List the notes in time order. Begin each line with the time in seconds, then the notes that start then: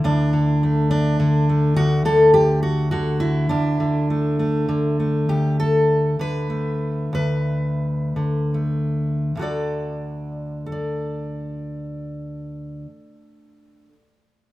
Already playing: D3 E4
0.04 D2 D4
0.33 D3
0.63 A3
0.91 D4
1.20 D3
1.49 A3
1.76 D2 F#4
2.05 D3 A4
2.34 G4
2.63 F#4
2.91 D3 F#4
3.20 E4
3.49 D2 D4
3.80 D3
4.10 A3
4.39 A3
4.69 D3
4.99 A3
5.29 D2 G4
5.60 A4
6.19 D3 B4
6.50 A3
7.13 D2 B4
8.16 D3
8.54 A3
9.35 D2 D3 F#4
9.41 A4 D5
10.66 A4
10.72 D5